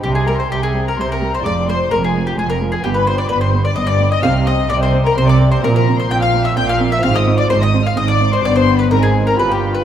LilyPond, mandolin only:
\new Staff \with { instrumentName = "Mandolin" } { \time 3/4 \key c \minor \tempo 4 = 128 g'16 aes'16 bes'16 c''16 g'16 aes'8 bes'16 c''16 bes'8 c''16 | d''8 c''8 bes'16 aes'8 g'16 aes'16 bes'8 aes'16 | g'16 b'16 c''16 d''16 b'16 c''8 d''16 ees''16 d''8 ees''16 | f''8 ees''8 d''16 c''8 bes'16 c''16 d''8 c''16 |
bes'16 bes'8 c''16 g''16 f''8 e''16 g''16 f''8 e''16 | f''16 ees''8 d''16 c''16 ees''8 f''16 ees''16 d''8 c''16 | d''16 c''8 b'16 bes'16 aes'8 bes'16 b'16 g'8 b'16 | }